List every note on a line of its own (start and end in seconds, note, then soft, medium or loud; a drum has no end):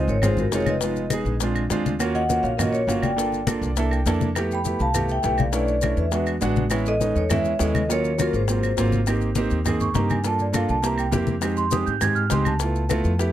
0.00 0.14 G#3 medium
0.00 0.15 C4 medium
0.00 0.15 D#4 medium
0.00 0.15 F4 medium
0.08 0.49 G#1 medium
0.08 0.23 A#4 medium
0.08 0.22 C#5 medium
0.08 high bongo soft
0.08 high conga soft
0.08 maracas soft
0.22 0.43 G#3 medium
0.22 0.43 C4 medium
0.22 0.44 D#4 medium
0.22 0.44 F4 medium
0.22 0.30 G#4 medium
0.22 0.30 C5 medium
0.22 high bongo medium
0.22 high conga soft
0.22 low conga medium
0.22 claves medium
0.22 maracas medium
0.37 0.52 F#4 medium
0.37 0.54 A#4 medium
0.37 high bongo soft
0.37 high conga soft
0.37 low conga medium
0.37 maracas soft
0.51 1.20 F1 medium
0.51 0.73 G#3 medium
0.51 0.73 C4 medium
0.51 0.73 D#4 medium
0.51 0.74 F4 medium
0.51 0.67 G#4 medium
0.51 0.67 C#5 medium
0.51 high bongo medium
0.51 low bongo medium
0.51 maracas medium
0.66 1.09 B4 medium
0.66 1.09 D#5 medium
0.66 high bongo soft
0.66 high conga medium
0.66 claves medium
0.66 maracas soft
0.81 1.02 G#3 medium
0.81 1.03 B3 medium
0.81 1.03 D#4 medium
0.81 1.03 F4 medium
0.81 high bongo medium
0.81 maracas medium
0.96 high conga soft
0.96 maracas soft
1.10 1.32 G#3 medium
1.10 1.32 B3 medium
1.10 1.33 D#4 medium
1.10 1.33 G#4 medium
1.10 high bongo soft
1.10 high conga medium
1.10 claves medium
1.10 maracas medium
1.25 1.67 A#1 medium
1.25 high bongo soft
1.25 high conga soft
1.25 maracas soft
1.40 1.62 G#3 medium
1.40 1.62 C4 medium
1.40 1.62 D4 medium
1.40 1.62 F4 medium
1.40 high bongo medium
1.40 high conga soft
1.40 maracas medium
1.55 high bongo soft
1.55 high conga soft
1.55 claves medium
1.55 maracas soft
1.70 2.38 D#2 medium
1.70 1.91 G#3 medium
1.70 1.92 C4 medium
1.70 1.92 D4 medium
1.70 1.92 F4 medium
1.70 high bongo medium
1.70 low bongo medium
1.70 high conga soft
1.70 maracas medium
1.86 high conga medium
1.86 maracas soft
1.99 2.20 A#3 medium
1.99 2.21 C#4 medium
1.99 2.21 F4 medium
1.99 2.21 F#4 medium
1.99 high bongo medium
1.99 high conga soft
1.99 claves medium
1.99 maracas medium
2.15 2.42 D#5 medium
2.15 2.42 F#5 loud
2.15 high conga soft
2.15 maracas soft
2.29 2.50 A#3 medium
2.29 2.50 C#4 medium
2.29 2.50 F4 medium
2.29 2.50 F#4 medium
2.29 high bongo medium
2.29 high conga medium
2.29 maracas medium
2.43 2.85 A#1 medium
2.43 2.50 C#5 medium
2.43 2.50 F5 medium
2.43 high bongo soft
2.43 high conga soft
2.43 maracas soft
2.57 2.79 A#3 medium
2.57 2.80 C#4 medium
2.57 2.80 F4 medium
2.57 2.80 F#4 medium
2.57 2.71 A#4 medium
2.57 2.74 D#5 medium
2.57 high bongo medium
2.57 high conga soft
2.57 low conga medium
2.57 claves medium
2.57 maracas medium
2.72 2.86 A#4 medium
2.72 2.88 C#5 medium
2.72 high bongo soft
2.72 high conga soft
2.72 maracas soft
2.87 3.56 G1 medium
2.87 3.08 A#3 medium
2.87 3.09 C#4 medium
2.87 3.09 F4 medium
2.87 3.09 F#4 medium
2.87 3.02 C#5 medium
2.87 3.02 F5 medium
2.87 high bongo medium
2.87 low bongo medium
2.87 high conga soft
2.87 maracas medium
3.02 3.44 D5 medium
3.02 3.44 G5 medium
3.02 high bongo soft
3.02 high conga medium
3.02 claves medium
3.02 maracas soft
3.16 3.38 A#3 medium
3.16 3.38 D4 medium
3.16 3.38 F4 medium
3.16 3.38 A4 medium
3.16 high bongo medium
3.16 high conga soft
3.16 maracas medium
3.32 high conga soft
3.32 maracas soft
3.47 3.68 A#3 medium
3.47 3.68 D4 medium
3.47 3.68 F4 medium
3.47 3.68 A4 medium
3.47 high bongo soft
3.47 high conga loud
3.47 claves medium
3.47 maracas medium
3.62 4.03 C2 medium
3.62 3.76 D5 medium
3.62 high bongo soft
3.62 high conga soft
3.62 maracas soft
3.77 3.98 A#3 medium
3.77 3.98 D4 medium
3.77 3.98 E4 medium
3.77 3.98 A4 medium
3.77 3.91 E5 medium
3.77 high bongo medium
3.77 high conga soft
3.77 maracas medium
3.91 4.06 G5 medium
3.91 high bongo soft
3.91 high conga soft
3.91 claves medium
3.91 maracas soft
4.06 4.74 F2 medium
4.06 4.27 A#3 medium
4.06 4.27 D4 medium
4.06 4.27 E4 medium
4.06 4.27 A4 medium
4.06 4.34 A5 medium
4.06 high bongo medium
4.06 low bongo medium
4.06 high conga soft
4.06 maracas medium
4.21 high conga medium
4.21 maracas soft
4.35 4.56 A3 medium
4.35 4.57 B3 medium
4.35 4.57 E4 medium
4.35 4.57 G4 loud
4.35 high bongo medium
4.35 high conga soft
4.35 claves medium
4.35 maracas medium
4.51 4.79 G5 medium
4.51 4.83 B5 loud
4.51 high conga soft
4.51 maracas soft
4.65 4.86 A3 medium
4.65 4.86 B3 medium
4.65 4.86 E4 medium
4.65 4.86 G4 medium
4.65 high bongo soft
4.65 high conga medium
4.65 maracas medium
4.79 5.21 C2 medium
4.79 5.08 F5 medium
4.79 5.11 A5 medium
4.79 high bongo soft
4.79 high conga soft
4.79 maracas soft
4.94 5.15 A3 medium
4.94 5.15 B3 medium
4.94 5.15 E4 medium
4.94 5.16 G4 medium
4.94 high bongo medium
4.94 high conga soft
4.94 low conga medium
4.94 claves medium
4.94 maracas medium
5.09 5.38 E5 medium
5.09 5.38 G5 loud
5.09 high bongo soft
5.09 high conga soft
5.09 maracas soft
5.23 5.92 B1 medium
5.23 5.44 A3 medium
5.23 5.44 B3 medium
5.23 5.45 E4 medium
5.23 5.45 G4 medium
5.23 high bongo medium
5.23 low bongo medium
5.23 high conga soft
5.23 maracas medium
5.38 5.52 D5 medium
5.38 5.53 F5 medium
5.38 high bongo soft
5.38 high conga medium
5.38 claves medium
5.38 maracas soft
5.52 5.74 A3 medium
5.52 5.74 C#4 medium
5.52 5.74 D4 medium
5.52 5.74 E4 medium
5.52 5.95 B4 medium
5.52 5.94 D5 medium
5.52 high bongo medium
5.52 high conga soft
5.52 maracas medium
5.68 high conga soft
5.68 maracas soft
5.82 6.03 A3 medium
5.82 6.03 C#4 medium
5.82 6.04 D4 medium
5.82 6.04 E4 medium
5.82 high bongo medium
5.82 high conga medium
5.82 claves medium
5.82 maracas medium
5.97 6.38 E2 medium
5.97 6.26 B4 medium
5.97 6.26 E5 medium
5.97 high bongo soft
5.97 high conga soft
5.97 maracas soft
6.11 6.33 G#3 medium
6.11 6.33 B3 medium
6.11 6.33 D4 medium
6.11 6.33 F#4 medium
6.11 high bongo medium
6.11 high conga soft
6.11 maracas medium
6.27 high conga soft
6.27 claves medium
6.27 maracas soft
6.41 7.10 A1 medium
6.41 6.62 G#3 medium
6.41 6.62 B3 medium
6.41 6.62 D4 medium
6.41 6.63 F#4 loud
6.41 high bongo medium
6.41 low bongo medium
6.41 high conga soft
6.41 maracas medium
6.56 high conga medium
6.56 maracas soft
6.70 6.91 G#3 medium
6.70 6.92 B3 medium
6.70 6.92 C#4 medium
6.70 6.92 E4 medium
6.70 high bongo medium
6.70 high conga soft
6.70 claves medium
6.70 maracas medium
6.86 7.14 A4 medium
6.86 7.17 D#5 loud
6.86 high conga soft
6.86 maracas soft
7.00 7.21 G#3 medium
7.00 7.21 B3 medium
7.00 7.21 C#4 medium
7.00 7.22 D#4 medium
7.00 high bongo medium
7.00 high conga medium
7.00 maracas medium
7.16 7.57 E2 medium
7.16 7.31 A4 medium
7.16 7.30 C#5 medium
7.16 high bongo soft
7.16 high conga soft
7.16 maracas soft
7.30 7.51 G#3 medium
7.30 7.51 B3 medium
7.30 7.51 C#4 medium
7.30 7.51 E4 loud
7.30 7.59 C#5 medium
7.30 7.61 E5 loud
7.30 high bongo medium
7.30 high conga soft
7.30 low conga medium
7.30 claves medium
7.30 maracas medium
7.45 high bongo soft
7.45 high conga soft
7.45 maracas soft
7.59 8.28 D#2 medium
7.59 7.80 G#3 medium
7.59 7.80 B3 medium
7.59 7.80 C#4 medium
7.59 7.81 E4 medium
7.59 7.88 A4 medium
7.59 7.89 D#5 medium
7.59 high bongo medium
7.59 low bongo medium
7.59 high conga soft
7.59 maracas medium
7.75 high bongo soft
7.75 high conga medium
7.75 claves medium
7.75 maracas soft
7.89 8.10 F#3 medium
7.89 8.10 A#3 medium
7.89 8.10 C#4 medium
7.89 8.10 F4 medium
7.89 8.18 A#4 medium
7.89 8.21 C#5 medium
7.89 high bongo medium
7.89 high conga soft
7.89 maracas medium
8.04 high conga soft
8.04 maracas soft
8.18 8.39 F#3 medium
8.18 8.39 A#3 medium
8.18 8.40 C#4 medium
8.18 8.40 F4 medium
8.18 8.27 F#4 medium
8.18 high bongo medium
8.18 high conga medium
8.18 claves medium
8.18 maracas medium
8.22 8.28 A#4 medium
8.33 8.74 G#1 medium
8.33 8.89 G#4 medium
8.33 8.89 C5 medium
8.33 high bongo soft
8.33 high conga soft
8.33 maracas soft
8.48 8.68 F#3 medium
8.48 8.69 A#3 medium
8.48 8.69 C4 medium
8.48 8.69 F4 medium
8.48 high bongo medium
8.48 high conga soft
8.48 maracas medium
8.63 high bongo soft
8.63 high conga soft
8.63 claves medium
8.63 maracas soft
8.77 9.46 G#1 medium
8.77 8.98 F#3 medium
8.77 8.98 A#3 medium
8.77 8.98 C4 medium
8.77 8.99 F4 medium
8.77 high bongo medium
8.77 low bongo medium
8.77 high conga soft
8.77 maracas medium
8.92 high conga medium
8.92 maracas soft
9.07 9.28 A#3 medium
9.07 9.28 C4 medium
9.07 9.28 D#4 medium
9.07 9.29 G4 medium
9.07 high bongo medium
9.07 claves medium
9.07 maracas medium
9.21 high conga soft
9.21 maracas soft
9.35 9.57 A#3 medium
9.35 9.57 C4 medium
9.35 9.57 D#4 medium
9.35 9.57 G4 medium
9.35 high bongo soft
9.35 high conga medium
9.35 maracas medium
9.50 9.92 D#2 medium
9.50 maracas soft
9.65 9.86 A#3 medium
9.65 9.86 C4 medium
9.65 9.87 D#4 medium
9.65 9.87 G#4 medium
9.65 high bongo medium
9.65 high conga soft
9.65 low conga medium
9.65 claves medium
9.65 maracas medium
9.80 9.95 C#6 medium
9.80 high conga soft
9.80 low conga medium
9.80 maracas soft
9.94 10.63 G2 medium
9.94 10.15 A#3 medium
9.94 10.16 C4 medium
9.94 10.16 D#4 medium
9.94 10.16 G4 medium
9.94 10.10 A#5 medium
9.94 high bongo medium
9.94 low bongo medium
9.94 high conga medium
9.94 maracas medium
10.10 10.25 G#5 medium
10.10 high conga medium
10.10 claves medium
10.10 maracas soft
10.24 10.45 A#3 medium
10.24 10.46 D4 medium
10.24 10.46 F4 medium
10.24 10.46 A4 medium
10.24 10.40 A5 medium
10.24 high bongo medium
10.24 high conga soft
10.24 maracas medium
10.39 10.55 D5 medium
10.39 high conga soft
10.39 maracas soft
10.53 10.74 A#3 medium
10.53 10.74 D4 medium
10.53 10.75 F4 medium
10.53 10.75 A4 medium
10.53 10.69 F5 medium
10.53 high bongo medium
10.53 high conga medium
10.53 claves medium
10.53 maracas medium
10.69 11.10 C2 medium
10.69 10.84 A5 medium
10.69 high bongo soft
10.69 maracas soft
10.82 11.04 A#3 medium
10.82 11.04 C4 medium
10.82 11.04 E4 medium
10.82 11.05 G4 medium
10.82 10.99 A#5 medium
10.82 high bongo medium
10.82 high conga soft
10.82 maracas medium
10.98 11.08 G5 medium
10.98 high bongo soft
10.98 high conga soft
10.98 claves medium
10.98 maracas soft
11.11 11.81 F2 medium
11.11 11.33 A#3 medium
11.11 11.33 C4 medium
11.11 11.33 E4 medium
11.11 11.33 G4 loud
11.11 high bongo medium
11.11 low bongo medium
11.11 high conga medium
11.11 maracas medium
11.27 high bongo soft
11.27 high conga medium
11.27 maracas soft
11.41 11.63 G#3 medium
11.41 11.63 C4 medium
11.41 11.63 D#4 medium
11.41 11.63 G4 medium
11.41 high bongo medium
11.41 high conga soft
11.41 claves medium
11.41 maracas medium
11.57 11.72 C6 medium
11.57 high conga soft
11.57 maracas soft
11.71 11.92 G#3 medium
11.71 11.93 C4 medium
11.71 11.93 D#4 medium
11.71 11.93 G4 medium
11.71 11.86 D#6 medium
11.71 high bongo medium
11.71 high conga medium
11.71 maracas medium
11.86 12.28 G#2 medium
11.86 12.01 G6 medium
11.86 maracas soft
12.01 12.22 G#3 medium
12.01 12.22 C4 medium
12.01 12.23 D#4 medium
12.01 12.23 G4 medium
12.01 12.16 G#6 loud
12.01 high bongo medium
12.01 high conga soft
12.01 low conga medium
12.01 claves medium
12.01 maracas medium
12.15 12.30 F6 loud
12.15 high conga soft
12.15 maracas soft
12.30 13.00 C#2 medium
12.30 12.51 G#3 medium
12.30 12.51 C4 medium
12.30 12.52 D#4 medium
12.30 12.52 G4 medium
12.30 12.46 C6 medium
12.30 high bongo medium
12.30 low bongo medium
12.30 high conga medium
12.30 maracas medium
12.45 13.16 A5 medium
12.45 high conga medium
12.45 claves medium
12.45 maracas soft
12.60 12.81 A3 medium
12.60 12.82 B3 medium
12.60 12.82 E4 medium
12.60 12.82 F4 medium
12.60 high bongo medium
12.60 high conga soft
12.60 maracas medium
12.75 high conga soft
12.75 maracas soft
12.89 13.10 A3 medium
12.89 13.11 B3 medium
12.89 13.11 E4 medium
12.89 13.11 F4 medium
12.89 high bongo medium
12.89 high conga medium
12.89 claves medium
12.89 maracas medium
13.04 13.32 F2 medium
13.04 high bongo soft
13.04 maracas soft
13.19 13.32 A3 medium
13.19 13.32 B3 medium
13.19 13.32 E4 medium
13.19 13.32 G4 medium
13.19 high bongo medium
13.19 high conga soft
13.19 maracas medium